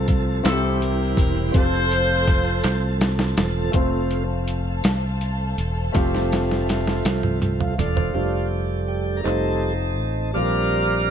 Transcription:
0.00 0.41 C2 loud
0.00 0.41 C3 medium
0.00 0.44 F3 medium
0.00 0.44 A3 medium
0.00 0.42 C4 medium
0.00 3.71 C4 medium
0.00 0.44 F4 medium
0.00 0.44 A4 medium
0.00 0.45 A4 medium
0.08 kick medium
0.08 closed hi-hat soft
0.44 1.14 C2 loud
0.44 1.50 C3 medium
0.44 1.54 E3 medium
0.44 1.55 G3 medium
0.44 1.51 C4 medium
0.44 1.55 E4 medium
0.44 1.52 E4 medium
0.44 0.52 F4 medium
0.44 1.55 G4 medium
0.44 0.80 A4 loud
0.44 snare loud
0.44 clap medium
0.44 closed hi-hat medium
0.48 1.52 C4 medium
0.52 1.54 G4 medium
0.82 1.18 A#4 medium
0.82 closed hi-hat soft
1.17 1.52 E1 loud
1.17 1.53 A#4 medium
1.17 kick medium
1.17 closed hi-hat soft
1.52 2.61 F1 loud
1.52 3.73 F3 medium
1.52 3.73 A3 medium
1.52 3.69 C4 medium
1.52 3.70 F4 soft
1.52 2.98 F4 medium
1.52 1.62 G4 medium
1.52 3.72 A4 medium
1.52 kick loud
1.52 closed hi-hat medium
1.56 2.98 A4 medium
1.56 2.98 C5 loud
1.63 3.75 A4 medium
1.92 closed hi-hat medium
2.28 kick medium
2.28 closed hi-hat soft
2.64 3.34 C2 medium
2.64 snare medium
2.64 clap medium
2.64 closed hi-hat medium
3.01 snare medium
3.01 closed hi-hat soft
3.19 snare medium
3.37 3.72 E1 medium
3.37 snare medium
3.37 closed hi-hat soft
3.72 4.80 F1 medium
3.72 4.24 F3 medium
3.72 5.89 A3 medium
3.72 4.24 A3 soft
3.72 5.90 C4 medium
3.72 4.24 C4 medium
3.72 5.91 F4 medium
3.72 8.11 A4 medium
3.72 8.11 C5 medium
3.72 5.92 F5 medium
3.72 8.11 A5 medium
3.72 kick medium
3.72 closed hi-hat medium
3.76 5.91 C5 medium
4.11 closed hi-hat soft
4.48 closed hi-hat medium
4.84 5.54 C2 medium
4.84 snare medium
4.84 closed hi-hat medium
5.21 closed hi-hat soft
5.58 5.92 E1 medium
5.58 closed hi-hat medium
5.92 7.01 F1 medium
5.92 7.40 F3 medium
5.92 8.10 A3 medium
5.92 7.40 A3 soft
5.92 8.11 C4 medium
5.92 7.41 C4 medium
5.92 8.11 F4 medium
5.92 8.12 G4 medium
5.92 8.13 E5 medium
5.92 kick medium
5.92 snare soft
5.92 closed hi-hat medium
6.15 snare soft
6.32 snare medium
6.32 closed hi-hat soft
6.51 snare soft
6.69 snare medium
6.69 closed hi-hat medium
6.88 snare medium
7.05 7.75 C2 medium
7.05 snare medium
7.05 closed hi-hat medium
7.23 mid tom medium
7.41 7.74 F3 soft
7.41 7.75 A3 soft
7.41 7.75 C4 soft
7.41 closed hi-hat soft
7.41 mid tom medium
7.60 7.78 F5 medium
7.60 floor tom medium
7.78 8.12 E1 medium
7.78 8.14 A3 medium
7.78 8.14 D4 medium
7.78 8.48 F4 loud
7.78 7.96 D5 medium
7.78 closed hi-hat medium
7.78 floor tom medium
7.96 8.14 C5 medium
7.96 floor tom medium
8.14 9.21 F1 medium
8.14 9.21 G3 soft
8.14 9.23 A3 soft
8.14 9.22 A3 soft
8.14 9.25 D4 soft
8.14 9.21 D4 soft
8.14 9.25 F4 soft
8.14 9.25 C5 soft
8.88 9.19 G4 medium
9.17 9.25 A#4 soft
9.23 9.98 F1 medium
9.23 9.73 G3 soft
9.23 9.74 A3 soft
9.23 10.35 A3 soft
9.23 10.31 C4 soft
9.23 10.31 D#4 soft
9.23 10.36 D#4 soft
9.23 10.34 F4 soft
9.23 10.39 A4 medium
9.23 10.36 C5 soft
9.23 clap medium
9.98 10.33 A1 medium
10.33 11.11 A#1 medium
10.33 11.11 A#2 soft
10.33 11.11 G3 soft
10.33 11.11 A#3 soft
10.33 11.11 C4 soft
10.33 11.11 D4 soft
10.33 11.11 F4 soft
10.33 11.11 G4 soft
10.33 11.11 A#4 medium
10.33 11.11 D5 medium
10.33 11.11 D5 soft
10.33 11.11 F5 medium

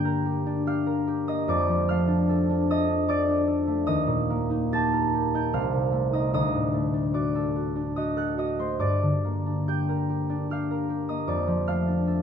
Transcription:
0.00 1.51 G2 medium
0.00 1.51 D3 soft
0.00 1.26 A#3 medium
0.00 0.45 D4 soft
0.00 0.24 G4 medium
0.00 1.48 D5 medium
0.00 1.52 G5 medium
0.00 1.48 D6 medium
0.00 1.52 G6 loud
0.05 0.85 A#4 medium
0.25 0.65 G4 medium
0.46 2.06 D4 medium
0.67 1.06 G4 medium
0.67 1.89 F5 medium
0.67 1.71 F6 loud
0.86 1.51 A#4 medium
1.07 1.51 G4 medium
1.27 1.51 A#3 soft
1.27 1.52 D#5 medium
1.27 1.62 D#6 medium
1.48 3.89 F2 medium
1.48 3.08 D5 medium
1.48 3.07 D6 loud
1.68 3.89 F3 medium
1.89 3.66 A3 medium
1.89 3.90 F5 medium
1.89 3.90 F6 loud
2.07 2.48 D4 medium
2.29 2.69 A4 medium
2.50 2.87 D4 medium
2.70 3.07 A4 medium
2.70 3.86 D#5 medium
2.70 3.36 D#6 medium
2.88 3.27 D4 medium
3.08 3.46 A4 medium
3.08 3.90 D5 medium
3.08 3.90 D6 loud
3.28 3.90 D4 medium
3.47 3.90 A4 medium
3.67 3.90 A3 medium
3.87 5.56 D#2 medium
3.87 6.13 D#5 medium
3.87 6.12 D#6 loud
4.07 5.56 A#2 medium
4.30 5.56 A#3 medium
4.50 5.33 D#4 soft
4.72 5.13 G4 medium
4.72 8.64 A5 medium
4.72 5.75 A6 loud
4.93 5.56 A#4 medium
5.14 5.56 G4 medium
5.34 6.11 D#4 medium
5.34 5.57 G5 medium
5.34 5.57 G6 medium
5.53 6.36 C2 medium
5.53 6.36 F5 medium
5.53 6.55 F6 medium
5.73 6.36 C3 soft
5.92 6.73 A3 medium
6.13 6.36 D#4 soft
6.13 6.34 D#5 medium
6.13 6.33 D#6 medium
6.34 8.83 D2 medium
6.34 7.96 D#5 medium
6.34 7.95 D#6 medium
6.54 8.84 A2 soft
6.74 8.58 A3 soft
6.94 7.75 D4 soft
7.14 7.55 F#4 medium
7.14 8.79 D5 medium
7.14 8.78 D6 medium
7.35 8.15 A4 medium
7.56 7.95 F#4 soft
7.76 9.45 D4 soft
7.96 8.37 F#4 medium
7.96 8.38 D#5 medium
7.96 8.31 D#6 medium
8.16 8.83 A4 soft
8.16 8.84 F#5 medium
8.16 8.52 F#6 medium
8.38 8.83 F#4 soft
8.38 8.84 D#5 medium
8.38 8.74 D#6 medium
8.59 8.83 A3 soft
8.59 8.84 C5 medium
8.59 8.95 C6 medium
8.79 11.32 G2 medium
8.79 11.27 D5 medium
8.79 11.26 D6 medium
9.02 11.33 D3 soft
9.24 11.07 A#3 soft
9.46 10.28 D4 soft
9.68 10.08 G4 soft
9.68 11.33 G5 medium
9.68 11.32 G6 medium
9.89 10.69 A#4 soft
10.10 10.50 G4 soft
10.30 11.86 D4 soft
10.50 10.88 G4 soft
10.50 11.67 F5 medium
10.50 11.51 F6 medium
10.71 11.32 A#4 soft
10.89 11.32 G4 medium
11.08 11.32 A#3 soft
11.08 11.32 D#5 medium
11.08 11.42 D#6 medium
11.27 12.22 F2 medium
11.27 12.22 D5 medium
11.27 12.22 D6 medium
11.47 12.22 F3 medium
11.67 12.22 A3 soft
11.67 12.22 F5 medium
11.67 12.22 F6 medium
11.87 12.22 D4 soft
12.07 12.22 A4 soft

